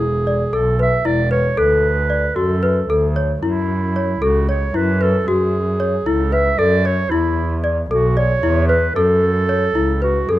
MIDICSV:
0, 0, Header, 1, 4, 480
1, 0, Start_track
1, 0, Key_signature, 3, "minor"
1, 0, Tempo, 528169
1, 1427, Time_signature, 7, 3, 24, 8
1, 9442, End_track
2, 0, Start_track
2, 0, Title_t, "Celesta"
2, 0, Program_c, 0, 8
2, 245, Note_on_c, 0, 74, 60
2, 368, Note_off_c, 0, 74, 0
2, 483, Note_on_c, 0, 69, 59
2, 606, Note_off_c, 0, 69, 0
2, 722, Note_on_c, 0, 71, 58
2, 845, Note_off_c, 0, 71, 0
2, 955, Note_on_c, 0, 64, 64
2, 1079, Note_off_c, 0, 64, 0
2, 1189, Note_on_c, 0, 71, 58
2, 1315, Note_off_c, 0, 71, 0
2, 1431, Note_on_c, 0, 69, 68
2, 1681, Note_off_c, 0, 69, 0
2, 1906, Note_on_c, 0, 74, 56
2, 2032, Note_off_c, 0, 74, 0
2, 2145, Note_on_c, 0, 66, 59
2, 2271, Note_off_c, 0, 66, 0
2, 2388, Note_on_c, 0, 71, 59
2, 2514, Note_off_c, 0, 71, 0
2, 2634, Note_on_c, 0, 69, 60
2, 2759, Note_off_c, 0, 69, 0
2, 2873, Note_on_c, 0, 73, 59
2, 2999, Note_off_c, 0, 73, 0
2, 3114, Note_on_c, 0, 64, 64
2, 3367, Note_off_c, 0, 64, 0
2, 3599, Note_on_c, 0, 73, 59
2, 3723, Note_off_c, 0, 73, 0
2, 3833, Note_on_c, 0, 69, 62
2, 3959, Note_off_c, 0, 69, 0
2, 4078, Note_on_c, 0, 73, 59
2, 4202, Note_off_c, 0, 73, 0
2, 4309, Note_on_c, 0, 64, 61
2, 4436, Note_off_c, 0, 64, 0
2, 4551, Note_on_c, 0, 71, 62
2, 4678, Note_off_c, 0, 71, 0
2, 4798, Note_on_c, 0, 66, 66
2, 5049, Note_off_c, 0, 66, 0
2, 5270, Note_on_c, 0, 73, 65
2, 5397, Note_off_c, 0, 73, 0
2, 5510, Note_on_c, 0, 64, 68
2, 5637, Note_off_c, 0, 64, 0
2, 5747, Note_on_c, 0, 71, 61
2, 5874, Note_off_c, 0, 71, 0
2, 5986, Note_on_c, 0, 69, 67
2, 6113, Note_off_c, 0, 69, 0
2, 6228, Note_on_c, 0, 73, 63
2, 6354, Note_off_c, 0, 73, 0
2, 6468, Note_on_c, 0, 64, 68
2, 6720, Note_off_c, 0, 64, 0
2, 6941, Note_on_c, 0, 74, 62
2, 7068, Note_off_c, 0, 74, 0
2, 7188, Note_on_c, 0, 69, 64
2, 7314, Note_off_c, 0, 69, 0
2, 7423, Note_on_c, 0, 74, 62
2, 7550, Note_off_c, 0, 74, 0
2, 7662, Note_on_c, 0, 64, 65
2, 7789, Note_off_c, 0, 64, 0
2, 7900, Note_on_c, 0, 71, 62
2, 8027, Note_off_c, 0, 71, 0
2, 8146, Note_on_c, 0, 69, 71
2, 8398, Note_off_c, 0, 69, 0
2, 8625, Note_on_c, 0, 73, 61
2, 8753, Note_off_c, 0, 73, 0
2, 8862, Note_on_c, 0, 64, 64
2, 8992, Note_off_c, 0, 64, 0
2, 9105, Note_on_c, 0, 71, 58
2, 9236, Note_off_c, 0, 71, 0
2, 9349, Note_on_c, 0, 69, 62
2, 9442, Note_off_c, 0, 69, 0
2, 9442, End_track
3, 0, Start_track
3, 0, Title_t, "Clarinet"
3, 0, Program_c, 1, 71
3, 0, Note_on_c, 1, 68, 77
3, 497, Note_on_c, 1, 69, 66
3, 511, Note_off_c, 1, 68, 0
3, 724, Note_off_c, 1, 69, 0
3, 742, Note_on_c, 1, 76, 75
3, 960, Note_on_c, 1, 74, 74
3, 974, Note_off_c, 1, 76, 0
3, 1189, Note_off_c, 1, 74, 0
3, 1194, Note_on_c, 1, 73, 72
3, 1442, Note_on_c, 1, 71, 71
3, 1456, Note_off_c, 1, 73, 0
3, 2135, Note_on_c, 1, 69, 59
3, 2148, Note_off_c, 1, 71, 0
3, 2862, Note_off_c, 1, 69, 0
3, 3122, Note_on_c, 1, 64, 64
3, 3851, Note_on_c, 1, 66, 65
3, 3865, Note_off_c, 1, 64, 0
3, 4081, Note_off_c, 1, 66, 0
3, 4085, Note_on_c, 1, 73, 62
3, 4327, Note_on_c, 1, 71, 73
3, 4340, Note_off_c, 1, 73, 0
3, 4562, Note_on_c, 1, 69, 72
3, 4576, Note_off_c, 1, 71, 0
3, 4795, Note_on_c, 1, 68, 76
3, 4808, Note_off_c, 1, 69, 0
3, 5507, Note_on_c, 1, 69, 65
3, 5521, Note_off_c, 1, 68, 0
3, 5750, Note_on_c, 1, 76, 75
3, 5764, Note_off_c, 1, 69, 0
3, 5985, Note_on_c, 1, 74, 80
3, 5998, Note_off_c, 1, 76, 0
3, 6233, Note_on_c, 1, 73, 79
3, 6247, Note_off_c, 1, 74, 0
3, 6453, Note_on_c, 1, 64, 72
3, 6466, Note_off_c, 1, 73, 0
3, 6936, Note_off_c, 1, 64, 0
3, 7194, Note_on_c, 1, 66, 69
3, 7432, Note_on_c, 1, 73, 85
3, 7446, Note_off_c, 1, 66, 0
3, 7881, Note_off_c, 1, 73, 0
3, 7887, Note_on_c, 1, 71, 72
3, 8117, Note_off_c, 1, 71, 0
3, 8133, Note_on_c, 1, 69, 83
3, 9071, Note_off_c, 1, 69, 0
3, 9116, Note_on_c, 1, 66, 57
3, 9364, Note_on_c, 1, 68, 69
3, 9378, Note_off_c, 1, 66, 0
3, 9442, Note_off_c, 1, 68, 0
3, 9442, End_track
4, 0, Start_track
4, 0, Title_t, "Double bass"
4, 0, Program_c, 2, 43
4, 0, Note_on_c, 2, 28, 70
4, 444, Note_off_c, 2, 28, 0
4, 488, Note_on_c, 2, 35, 75
4, 928, Note_off_c, 2, 35, 0
4, 963, Note_on_c, 2, 28, 76
4, 1403, Note_off_c, 2, 28, 0
4, 1443, Note_on_c, 2, 38, 68
4, 2116, Note_off_c, 2, 38, 0
4, 2147, Note_on_c, 2, 42, 77
4, 2597, Note_off_c, 2, 42, 0
4, 2629, Note_on_c, 2, 38, 77
4, 3080, Note_off_c, 2, 38, 0
4, 3111, Note_on_c, 2, 42, 72
4, 3796, Note_off_c, 2, 42, 0
4, 3828, Note_on_c, 2, 37, 78
4, 4279, Note_off_c, 2, 37, 0
4, 4318, Note_on_c, 2, 42, 81
4, 4765, Note_off_c, 2, 42, 0
4, 4802, Note_on_c, 2, 42, 67
4, 5481, Note_off_c, 2, 42, 0
4, 5518, Note_on_c, 2, 37, 80
4, 5963, Note_off_c, 2, 37, 0
4, 5992, Note_on_c, 2, 42, 83
4, 6438, Note_off_c, 2, 42, 0
4, 6466, Note_on_c, 2, 40, 74
4, 7149, Note_off_c, 2, 40, 0
4, 7190, Note_on_c, 2, 35, 84
4, 7636, Note_off_c, 2, 35, 0
4, 7660, Note_on_c, 2, 40, 92
4, 8110, Note_off_c, 2, 40, 0
4, 8144, Note_on_c, 2, 42, 80
4, 8832, Note_off_c, 2, 42, 0
4, 8871, Note_on_c, 2, 37, 75
4, 9329, Note_off_c, 2, 37, 0
4, 9349, Note_on_c, 2, 42, 78
4, 9442, Note_off_c, 2, 42, 0
4, 9442, End_track
0, 0, End_of_file